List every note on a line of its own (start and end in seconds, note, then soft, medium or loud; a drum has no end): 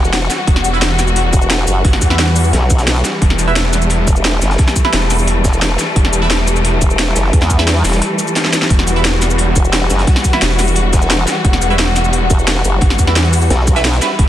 0.00 0.29 E1 loud
0.00 14.29 E3 medium
0.00 14.29 G3 medium
0.00 3.19 F#4 medium
0.05 cabasa soft
0.13 snare loud
0.13 closed hi-hat loud
0.13 closed hi-hat medium
0.30 snare soft
0.30 snare medium
0.30 closed hi-hat medium
0.30 cabasa medium
0.47 1.32 E1 loud
0.47 kick loud
0.47 closed hi-hat medium
0.56 snare medium
0.65 closed hi-hat medium
0.65 cabasa medium
0.73 0.77 E4 medium
0.73 0.77 B4 medium
0.73 0.78 E5 medium
0.73 closed hi-hat soft
0.82 snare loud
0.82 closed hi-hat medium
0.99 snare soft
0.99 closed hi-hat medium
0.99 cabasa medium
1.07 cabasa soft
1.16 closed hi-hat medium
1.33 1.66 E1 loud
1.33 kick loud
1.33 closed hi-hat medium
1.33 cabasa medium
1.42 cabasa soft
1.50 snare loud
1.50 closed hi-hat medium
1.59 snare soft
1.67 1.83 F#1 loud
1.67 closed hi-hat medium
1.67 cabasa medium
1.85 2.00 G1 loud
1.85 kick loud
1.85 closed hi-hat medium
1.93 snare medium
1.93 closed hi-hat soft
2.02 2.52 E2 loud
2.02 kick medium
2.02 closed hi-hat medium
2.02 cabasa medium
2.10 2.15 E4 medium
2.10 2.15 B4 medium
2.10 2.15 E5 medium
2.10 snare medium
2.19 snare loud
2.19 closed hi-hat medium
2.19 open hi-hat medium
2.27 closed hi-hat soft
2.36 closed hi-hat medium
2.36 open hi-hat medium
2.36 cabasa medium
2.45 cabasa soft
2.53 3.03 B1 medium
2.53 snare medium
2.53 closed hi-hat medium
2.61 snare soft
2.70 kick loud
2.70 closed hi-hat medium
2.70 cabasa medium
2.78 snare medium
2.78 closed hi-hat medium
2.78 cabasa soft
2.87 snare loud
2.87 closed hi-hat medium
2.96 closed hi-hat medium
3.04 snare loud
3.04 snare soft
3.04 closed hi-hat medium
3.04 cabasa medium
3.13 snare soft
3.22 4.06 E1 loud
3.22 8.68 A3 medium
3.22 kick loud
3.22 closed hi-hat medium
3.30 snare medium
3.39 closed hi-hat medium
3.39 cabasa medium
3.47 3.52 E4 medium
3.47 3.52 B4 medium
3.47 3.52 E5 medium
3.47 closed hi-hat soft
3.56 snare loud
3.56 closed hi-hat medium
3.73 snare soft
3.73 closed hi-hat medium
3.73 cabasa medium
3.82 cabasa soft
3.90 closed hi-hat loud
3.90 closed hi-hat medium
4.07 4.40 E1 medium
4.07 kick loud
4.07 closed hi-hat medium
4.07 cabasa medium
4.16 cabasa soft
4.24 snare loud
4.24 closed hi-hat medium
4.33 snare soft
4.42 4.57 F#1 loud
4.42 snare loud
4.42 closed hi-hat medium
4.42 cabasa medium
4.50 snare loud
4.50 closed hi-hat medium
4.58 kick loud
4.58 snare loud
4.58 closed hi-hat medium
4.67 snare loud
4.67 snare medium
4.67 closed hi-hat medium
4.76 kick medium
4.76 closed hi-hat medium
4.76 cabasa medium
4.85 4.89 E4 medium
4.85 4.89 B4 medium
4.85 4.89 E5 medium
4.85 snare medium
4.93 5.43 E1 loud
4.93 snare loud
4.93 closed hi-hat medium
4.93 open hi-hat medium
5.02 closed hi-hat soft
5.10 snare soft
5.10 closed hi-hat medium
5.10 open hi-hat medium
5.10 cabasa medium
5.19 cabasa soft
5.27 closed hi-hat medium
5.45 5.78 E1 loud
5.45 kick loud
5.45 snare loud
5.45 closed hi-hat medium
5.45 cabasa medium
5.53 cabasa soft
5.62 snare loud
5.62 closed hi-hat medium
5.78 snare loud
5.78 snare soft
5.78 closed hi-hat medium
5.78 cabasa medium
5.96 6.80 E1 loud
5.96 kick loud
5.96 closed hi-hat medium
5.96 closed hi-hat loud
6.05 snare medium
6.13 closed hi-hat medium
6.13 cabasa medium
6.22 6.26 E4 medium
6.22 6.26 B4 medium
6.22 6.26 E5 medium
6.22 closed hi-hat soft
6.30 snare loud
6.30 closed hi-hat medium
6.47 closed hi-hat medium
6.47 cabasa medium
6.56 cabasa soft
6.65 closed hi-hat medium
6.65 closed hi-hat loud
6.81 7.15 E1 loud
6.81 kick loud
6.81 closed hi-hat medium
6.81 cabasa medium
6.90 cabasa soft
6.99 snare loud
6.99 closed hi-hat loud
6.99 closed hi-hat medium
7.07 snare soft
7.15 7.32 F#1 loud
7.15 snare loud
7.15 closed hi-hat medium
7.15 cabasa medium
7.24 snare soft
7.33 7.83 E2 loud
7.33 kick loud
7.33 closed hi-hat loud
7.33 closed hi-hat medium
7.41 snare loud
7.41 snare medium
7.41 closed hi-hat medium
7.50 kick medium
7.50 snare soft
7.50 closed hi-hat medium
7.50 cabasa medium
7.59 7.63 E4 medium
7.59 7.63 B4 medium
7.59 7.63 E5 medium
7.59 snare medium
7.59 closed hi-hat medium
7.67 snare loud
7.67 closed hi-hat loud
7.67 open hi-hat medium
7.77 closed hi-hat soft
7.84 8.02 E1 medium
7.84 snare medium
7.84 snare soft
7.84 closed hi-hat medium
7.84 open hi-hat medium
7.84 cabasa medium
7.89 snare loud
7.89 closed hi-hat medium
7.93 snare loud
7.93 closed hi-hat medium
7.93 cabasa soft
8.02 closed hi-hat medium
8.19 closed hi-hat medium
8.19 cabasa medium
8.27 cabasa soft
8.36 snare medium
8.36 snare loud
8.36 closed hi-hat loud
8.45 snare medium
8.45 snare soft
8.53 snare medium
8.53 closed hi-hat medium
8.53 cabasa medium
8.62 snare medium
8.70 9.55 E1 loud
8.70 14.17 F#4 medium
8.70 kick loud
8.70 closed hi-hat loud
8.70 closed hi-hat medium
8.79 snare medium
8.87 closed hi-hat medium
8.87 cabasa medium
8.96 9.00 E4 medium
8.96 9.00 B4 medium
8.96 9.00 E5 medium
8.96 closed hi-hat soft
9.05 snare loud
9.05 closed hi-hat loud
9.05 closed hi-hat medium
9.22 snare soft
9.22 closed hi-hat medium
9.22 cabasa medium
9.30 cabasa soft
9.38 closed hi-hat medium
9.38 closed hi-hat loud
9.56 9.89 E1 loud
9.56 kick loud
9.56 closed hi-hat medium
9.56 cabasa medium
9.65 cabasa soft
9.73 snare loud
9.73 closed hi-hat medium
9.73 closed hi-hat loud
9.82 snare soft
9.90 10.06 F#1 medium
9.90 snare loud
9.90 closed hi-hat medium
9.90 cabasa medium
9.99 snare loud
9.99 closed hi-hat medium
10.07 kick loud
10.07 snare loud
10.07 closed hi-hat medium
10.16 snare loud
10.16 snare medium
10.16 closed hi-hat medium
10.25 kick medium
10.25 closed hi-hat medium
10.25 cabasa medium
10.33 10.38 E4 medium
10.33 10.38 B4 medium
10.33 10.38 E5 medium
10.33 snare medium
10.42 10.92 E1 loud
10.42 snare loud
10.42 closed hi-hat loud
10.42 open hi-hat medium
10.51 closed hi-hat soft
10.59 snare soft
10.59 closed hi-hat medium
10.59 open hi-hat medium
10.59 cabasa medium
10.67 cabasa soft
10.76 closed hi-hat medium
10.93 11.26 E1 loud
10.93 kick loud
10.93 snare loud
10.93 closed hi-hat medium
10.93 cabasa medium
11.02 cabasa soft
11.10 snare loud
11.10 closed hi-hat medium
11.10 closed hi-hat loud
11.27 snare soft
11.27 snare loud
11.27 closed hi-hat medium
11.27 cabasa medium
11.45 12.29 E1 loud
11.45 kick loud
11.45 closed hi-hat medium
11.53 snare medium
11.62 closed hi-hat medium
11.62 cabasa medium
11.70 11.75 E4 medium
11.70 11.75 B4 medium
11.70 11.75 E5 medium
11.70 closed hi-hat soft
11.78 snare loud
11.78 closed hi-hat medium
11.96 snare soft
11.96 closed hi-hat medium
11.96 cabasa medium
12.05 cabasa soft
12.13 closed hi-hat medium
12.30 12.63 E1 loud
12.30 kick loud
12.30 closed hi-hat medium
12.30 cabasa medium
12.39 cabasa soft
12.48 snare loud
12.48 closed hi-hat medium
12.56 snare soft
12.65 12.80 F#1 medium
12.65 closed hi-hat medium
12.65 cabasa medium
12.81 12.98 G1 loud
12.81 kick loud
12.81 closed hi-hat medium
12.90 snare medium
12.90 closed hi-hat soft
12.99 13.49 E2 loud
12.99 kick medium
12.99 closed hi-hat medium
12.99 cabasa medium
13.07 13.12 E4 medium
13.07 13.12 B4 medium
13.07 13.12 E5 medium
13.07 snare medium
13.16 snare loud
13.16 closed hi-hat medium
13.16 open hi-hat medium
13.24 closed hi-hat soft
13.33 closed hi-hat medium
13.33 open hi-hat medium
13.33 cabasa medium
13.42 cabasa soft
13.50 14.00 B1 medium
13.50 snare medium
13.50 closed hi-hat medium
13.60 snare soft
13.67 kick loud
13.67 closed hi-hat medium
13.67 cabasa medium
13.76 13.80 E4 loud
13.76 13.80 B4 medium
13.76 13.80 E5 loud
13.76 snare loud
13.76 closed hi-hat medium
13.76 cabasa soft
13.85 snare loud
13.85 closed hi-hat medium
13.93 closed hi-hat medium
14.02 14.06 E4 medium
14.02 14.06 B4 medium
14.02 14.06 E5 loud
14.02 snare soft
14.02 snare loud
14.02 closed hi-hat medium
14.02 cabasa medium
14.10 snare soft
14.19 14.29 E1 loud
14.19 14.29 A3 medium
14.19 kick loud
14.19 closed hi-hat medium